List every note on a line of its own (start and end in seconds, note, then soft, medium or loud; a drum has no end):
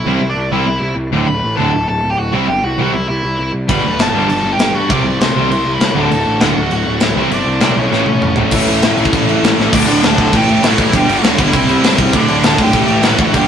0.00 0.27 E4 medium
0.00 0.26 E5 medium
0.05 0.18 C2 medium
0.05 0.19 C3 medium
0.05 0.19 G3 loud
0.05 0.19 C4 loud
0.20 0.33 C2 medium
0.29 0.50 D4 medium
0.29 0.51 D5 medium
0.36 0.48 C2 medium
0.51 0.64 C2 medium
0.51 0.64 C3 medium
0.51 0.65 G3 medium
0.51 0.65 C4 medium
0.51 0.94 E4 medium
0.51 0.94 E5 medium
0.66 0.79 C2 medium
0.81 0.94 C2 medium
0.96 1.09 C2 medium
1.11 1.24 D1 medium
1.11 1.24 D2 medium
1.11 1.25 A2 medium
1.11 1.25 D3 medium
1.27 1.40 D1 medium
1.27 1.56 B4 medium
1.27 1.55 B5 medium
1.43 1.55 A1 medium
1.57 1.70 D1 medium
1.57 1.69 D2 loud
1.57 1.70 A2 medium
1.57 1.70 D3 medium
1.57 1.86 A4 medium
1.57 1.87 A5 medium
1.74 1.86 D1 medium
1.88 2.00 D1 medium
1.88 2.10 A4 medium
1.88 2.09 A5 medium
2.03 2.15 D1 medium
2.10 2.18 G4 medium
2.10 2.17 G5 medium
2.18 2.30 D1 medium
2.18 2.33 F#4 medium
2.18 2.33 F#5 medium
2.33 2.46 C2 medium
2.33 2.45 C3 medium
2.33 2.45 G3 loud
2.33 2.45 C4 loud
2.33 2.48 E4 medium
2.33 2.47 E5 medium
2.48 2.60 G1 medium
2.48 2.63 G4 medium
2.48 2.64 G5 loud
2.64 2.76 C2 medium
2.64 2.92 F#4 medium
2.64 2.93 F#5 medium
2.78 2.92 C2 medium
2.78 2.91 C3 medium
2.78 2.91 G3 loud
2.78 2.92 C4 loud
2.93 3.06 C2 medium
2.93 3.07 E4 medium
2.93 3.07 E5 medium
3.08 3.21 C2 loud
3.08 3.51 E4 medium
3.08 3.51 E5 medium
3.24 3.36 C2 medium
3.39 3.51 C2 medium
3.53 3.66 C2 medium
3.69 3.81 G1 medium
3.69 3.81 G2 medium
3.69 3.81 D3 loud
3.69 3.81 G3 loud
3.69 4.28 B3 loud
3.69 4.29 D4 loud
3.69 4.29 G4 loud
3.69 3.97 B4 medium
3.69 4.00 B5 medium
3.69 kick loud
3.69 crash medium
3.84 3.96 D2 medium
3.99 4.11 G1 medium
3.99 4.28 A4 medium
3.99 4.27 A5 loud
3.99 snare loud
3.99 crash medium
4.14 4.26 G1 medium
4.14 4.27 G2 medium
4.14 4.27 D3 medium
4.14 4.27 G3 medium
4.27 4.42 G1 loud
4.27 4.88 G2 medium
4.27 4.88 D3 medium
4.27 4.88 G3 medium
4.27 4.89 B3 medium
4.27 4.90 D4 medium
4.27 4.89 G4 medium
4.27 4.50 A4 medium
4.27 4.52 A5 loud
4.27 crash medium
4.44 4.56 G1 medium
4.52 4.73 G4 medium
4.52 4.75 G5 medium
4.58 4.71 G1 medium
4.58 snare loud
4.58 crash medium
4.75 4.87 G2 medium
4.75 4.89 F#4 medium
4.75 4.89 F#5 medium
4.89 5.02 C2 medium
4.89 5.02 C3 loud
4.89 5.02 G3 loud
4.89 5.02 C4 loud
4.89 5.48 E4 loud
4.89 5.49 G4 loud
4.89 5.50 C5 loud
4.89 5.19 D5 medium
4.89 5.20 D6 loud
4.89 kick loud
4.89 crash medium
5.05 5.17 C2 medium
5.20 5.32 C2 medium
5.20 5.48 C5 medium
5.20 5.50 C6 loud
5.20 snare loud
5.20 crash medium
5.36 5.48 C2 medium
5.36 5.48 C3 medium
5.36 5.48 G3 medium
5.36 5.48 C4 loud
5.47 5.62 C2 loud
5.47 5.91 C3 medium
5.47 5.93 G3 medium
5.47 5.94 C4 medium
5.47 5.94 E4 medium
5.47 5.94 G4 medium
5.47 5.71 C5 medium
5.51 5.94 C5 medium
5.51 5.72 C6 medium
5.51 crash medium
5.65 5.77 C2 medium
5.74 5.95 B4 medium
5.74 5.95 B5 loud
5.79 5.92 C2 medium
5.79 snare loud
5.79 crash medium
5.95 6.07 D1 medium
5.95 6.07 D2 medium
5.95 6.08 A2 loud
5.95 6.08 D3 loud
5.95 6.54 A3 loud
5.95 6.53 F#4 loud
5.95 6.08 A4 medium
5.95 6.10 A5 medium
6.10 6.23 D1 medium
6.10 6.38 A4 medium
6.10 6.42 A5 medium
6.10 crash medium
6.25 6.38 A1 medium
6.40 6.53 D1 medium
6.40 6.53 D2 medium
6.40 6.53 A2 loud
6.40 6.54 D3 loud
6.40 6.69 F#4 medium
6.40 6.71 F#5 loud
6.40 snare loud
6.40 crash medium
6.54 6.68 D1 medium
6.54 7.15 A2 medium
6.54 7.16 D3 medium
6.54 7.15 A3 medium
6.54 7.14 F#4 medium
6.58 7.14 D2 medium
6.71 6.83 D1 loud
6.71 7.00 F#4 medium
6.71 7.00 F#5 medium
6.71 crash medium
6.86 6.98 D1 medium
7.00 7.13 D1 medium
7.00 7.29 E4 medium
7.00 7.30 E5 medium
7.00 snare loud
7.00 crash medium
7.16 7.28 C2 loud
7.16 7.29 C3 medium
7.16 7.29 G3 loud
7.16 7.29 C4 loud
7.16 7.76 E4 medium
7.16 7.74 G4 loud
7.16 7.73 C5 medium
7.30 7.43 G1 medium
7.30 7.75 D4 medium
7.30 7.75 D5 loud
7.30 crash medium
7.46 7.58 C2 medium
7.60 7.74 C2 medium
7.60 7.73 C3 loud
7.60 7.74 G3 medium
7.60 7.74 C4 loud
7.60 snare loud
7.60 crash medium
7.75 7.88 B1 medium
7.75 7.90 G3 medium
7.75 7.91 C4 medium
7.75 8.34 C#4 medium
7.75 7.91 E4 medium
7.75 7.90 G4 medium
7.75 7.90 C5 medium
7.75 8.34 C#5 medium
7.79 7.90 C3 medium
7.91 8.04 A1 medium
7.91 8.04 A2 medium
7.91 8.05 E3 medium
7.91 8.05 A3 loud
7.91 8.51 C#4 loud
7.91 8.52 E4 loud
7.91 8.52 A4 loud
7.91 snare soft
8.06 8.19 A1 medium
8.06 high tom medium
8.22 8.34 A1 medium
8.22 mid tom medium
8.36 8.49 A1 medium
8.36 8.50 A2 medium
8.36 8.49 E3 loud
8.36 8.50 A3 medium
8.36 floor tom loud
8.51 8.62 A1 medium
8.51 8.68 A2 loud
8.51 8.69 E3 medium
8.51 8.68 A3 loud
8.51 9.56 C#4 loud
8.51 9.54 E4 loud
8.51 9.54 A4 loud
8.51 kick loud
8.51 crash loud
8.51 crash medium
8.67 8.78 A1 medium
8.67 8.82 A2 medium
8.67 8.83 E3 medium
8.67 8.83 A3 medium
8.67 crash medium
8.82 8.92 A1 medium
8.82 8.99 A2 medium
8.82 8.98 E3 medium
8.82 8.98 A3 loud
8.82 snare loud
8.82 crash medium
8.97 9.07 A1 loud
8.97 9.13 A2 medium
8.97 9.14 E3 medium
8.97 9.14 A3 medium
8.97 crash medium
9.05 kick loud
9.13 9.32 A1 loud
9.13 9.28 A2 medium
9.13 9.28 E3 loud
9.13 9.27 A3 loud
9.13 kick medium
9.13 crash medium
9.29 9.43 A2 medium
9.29 9.44 E3 medium
9.29 9.44 A3 medium
9.29 crash medium
9.43 9.52 A1 medium
9.43 9.58 A2 medium
9.43 9.58 E3 medium
9.43 9.57 A3 medium
9.43 snare loud
9.43 crash medium
9.55 9.67 A1 medium
9.55 9.72 A3 medium
9.55 9.71 C#4 medium
9.55 9.71 E4 medium
9.55 9.70 A4 medium
9.59 9.72 A2 medium
9.59 9.72 E3 medium
9.59 snare medium
9.73 9.84 D1 loud
9.73 9.89 D2 loud
9.73 9.89 A2 loud
9.73 9.88 D3 loud
9.73 10.02 D4 medium
9.73 10.05 D5 medium
9.73 kick loud
9.73 crash loud
9.73 crash medium
9.88 9.98 D1 loud
9.88 10.03 D2 medium
9.88 10.04 A2 loud
9.88 10.04 D3 loud
9.88 crash medium
10.03 10.13 D1 loud
10.03 10.19 D2 medium
10.03 10.19 A2 medium
10.03 10.18 D3 loud
10.03 10.32 A4 medium
10.03 snare loud
10.03 crash medium
10.07 10.35 A5 medium
10.18 10.29 D1 loud
10.18 10.33 D2 medium
10.18 10.33 A2 medium
10.18 10.33 D3 medium
10.18 kick medium
10.18 crash medium
10.33 10.44 A1 loud
10.33 10.50 A2 medium
10.33 10.50 E3 loud
10.33 10.49 A3 loud
10.33 10.62 G4 medium
10.33 10.63 G5 loud
10.33 kick medium
10.33 crash medium
10.48 10.59 A1 medium
10.48 10.63 A2 medium
10.48 10.64 E3 medium
10.48 10.64 A3 medium
10.48 crash medium
10.63 10.74 A1 medium
10.63 10.79 A2 medium
10.63 10.79 E3 loud
10.63 10.78 A3 medium
10.63 10.79 F#4 medium
10.63 10.81 F#5 medium
10.63 snare loud
10.63 crash loud
10.78 10.89 A1 medium
10.78 10.93 A2 medium
10.78 10.93 E3 loud
10.78 10.93 A3 medium
10.78 10.93 E4 medium
10.78 10.95 E5 loud
10.78 kick loud
10.78 crash medium
10.91 11.04 G1 medium
10.91 11.05 G2 loud
10.91 kick loud
10.91 crash medium
10.95 11.09 G2 loud
10.95 11.08 D3 loud
10.95 11.07 G3 loud
10.95 11.15 G4 medium
10.95 11.16 G5 medium
11.08 11.19 G1 medium
11.08 11.23 G2 medium
11.08 11.24 D3 medium
11.08 11.24 G3 medium
11.08 crash medium
11.18 11.38 F#4 medium
11.18 11.40 F#5 medium
11.22 11.33 D2 loud
11.22 11.39 G2 medium
11.22 11.38 D3 medium
11.22 11.37 G3 loud
11.22 snare loud
11.22 crash medium
11.38 11.49 G1 loud
11.38 11.53 G2 medium
11.38 11.53 D3 medium
11.38 11.53 G3 loud
11.38 11.95 E4 medium
11.38 11.96 E5 medium
11.38 kick loud
11.38 crash medium
11.53 11.64 C2 loud
11.53 11.68 C3 medium
11.53 11.67 G3 medium
11.53 11.67 C4 loud
11.53 kick medium
11.53 crash medium
11.68 11.79 C2 loud
11.68 11.81 C3 medium
11.68 11.82 G3 medium
11.68 11.83 C4 loud
11.68 crash medium
11.82 11.94 G2 medium
11.82 11.99 C3 medium
11.82 11.98 G3 medium
11.82 11.97 C4 medium
11.82 snare loud
11.82 crash loud
11.98 12.15 C2 loud
11.98 12.13 C3 medium
11.98 12.13 G3 medium
11.98 12.12 C4 loud
11.98 kick loud
11.98 crash medium
12.13 12.24 D1 loud
12.13 12.27 D2 loud
12.13 12.26 A2 loud
12.13 12.27 D3 loud
12.13 12.42 D4 medium
12.13 12.43 D5 medium
12.13 kick loud
12.13 crash medium
12.27 12.39 D1 medium
12.27 12.41 D2 medium
12.27 12.42 A2 medium
12.27 12.43 D3 loud
12.27 crash medium
12.43 12.54 D1 loud
12.43 12.58 D2 medium
12.43 12.58 A2 loud
12.43 12.57 D3 loud
12.43 12.58 A4 medium
12.43 12.62 A5 loud
12.43 snare loud
12.43 crash loud
12.58 12.73 G#1 medium
12.58 12.73 D2 medium
12.58 12.73 A2 medium
12.58 12.72 D3 medium
12.58 13.02 G4 medium
12.58 kick medium
12.58 crash medium
12.62 13.05 G5 loud
12.73 12.84 A1 loud
12.73 12.89 A2 medium
12.73 12.89 E3 loud
12.73 12.87 A3 loud
12.73 kick medium
12.73 crash medium
12.88 12.99 A1 medium
12.88 13.03 A2 medium
12.88 13.03 E3 medium
12.88 13.04 A3 loud
12.88 crash medium
13.03 13.14 A1 medium
13.03 13.18 A2 medium
13.03 13.17 E3 medium
13.03 13.17 A3 medium
13.03 13.18 F#4 medium
13.03 snare loud
13.03 crash medium
13.07 13.19 F#5 medium
13.18 13.36 D2 loud
13.18 13.33 A2 medium
13.18 13.33 E3 medium
13.18 13.33 A3 loud
13.18 13.33 F#4 medium
13.18 13.36 F#5 loud
13.18 kick loud
13.18 crash medium
13.34 13.45 G1 medium
13.34 13.48 G2 loud
13.34 13.48 D3 loud
13.34 13.47 G3 loud
13.34 13.48 G4 medium
13.34 13.48 G5 loud
13.34 kick medium
13.34 crash medium